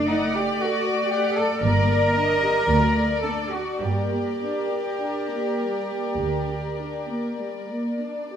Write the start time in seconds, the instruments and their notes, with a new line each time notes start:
Already playing: double bass section F#1, viola section A3, violin section D5
0.10 cello section D#4, viola section F#5
0.34 cello section G4, viola section D5
0.60 cello section F#4, viola section A4
0.86 viola section D5
1.11 cello section G4, viola section F#5
1.36 cello section A4, viola section D5
1.62 double bass section G1, viola section G3 A#3, cello section A#4, violin section D5
1.89 viola section A#3
2.14 viola section D4, violin section D#5
2.43 viola section G4
2.67 double bass section D2, viola section F#3 A3, violin section D5
2.98 viola section A3
3.24 viola section D4, cello section A4
3.52 cello section F#4, viola section F#4
3.81 double bass section G2, viola section G3 A#3, cello section G4, violin section A#4 D5
4.13 viola section A#3
4.43 viola section D4
4.72 viola section G4
5.02 viola section D4
5.31 viola section A#3
5.60 viola section G3
5.90 viola section A#3
6.18 double bass section D2, viola section D4
6.50 viola section G4
6.79 viola section D4
7.09 viola section A#3
7.39 viola section G3
7.70 viola section A#3
8.01 viola section D4
8.32 viola section G4